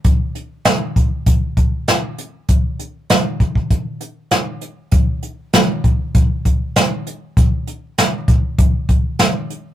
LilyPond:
\new DrumStaff \with { instrumentName = "Drums" } \drummode { \time 4/4 \tempo 4 = 98 <hh bd>8 hh8 <hh sn>8 <hh bd>8 <hh bd>8 <hh bd>8 <hh sn>8 hh8 | <hh bd>8 hh8 <hh sn>8 <hh bd>16 bd16 <hh bd>8 hh8 <hh sn>8 hh8 | <hh bd>8 hh8 <hh sn>8 <hh bd>8 <hh bd>8 <hh bd>8 <hh sn>8 hh8 | <hh bd>8 hh8 <hh sn>8 <hh bd>8 <hh bd>8 <hh bd>8 <hh sn>8 hh8 | }